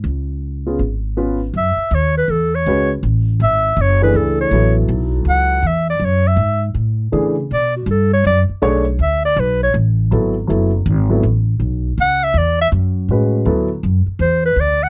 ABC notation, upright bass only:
X:1
M:4/4
L:1/8
Q:"Swing" 1/4=161
K:F#m
V:1 name="Upright bass" clef=bass
C,,4 G,,,4 | F,, z ^D,,2 E,,2 C,,2 | A,,,2 G,,,2 F,,,2 C,,2 | A,,,2 B,,,2 C,,2 E,,2 |
F,,2 G,,2 A,,2 C,2 | B,,2 =G,,2 F,, z B,,,2 | D,,2 B,,,2 A,,,2 G,,,2 | F,,,2 G,,,2 A,,,2 B,,,2 |
C,,2 E,,2 F,,2 A,,2 | D,,2 F,, z E,,2 D,,2 |]